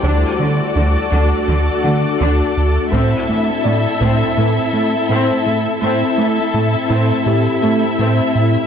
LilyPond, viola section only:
\new Staff \with { instrumentName = "Viola section" } { \time 4/4 \key a \dorian \tempo 4 = 83 << { fis'1 | e'1 | e'1 | } \\ { d'8 fis8 a8 d'8 fis8 a8 d'8 r8 | c'8 e8 a8 c'8 e8 a8 c'8 r8 | c'8 e8 a8 c'8 e8 a8 c'8 r8 | } >> }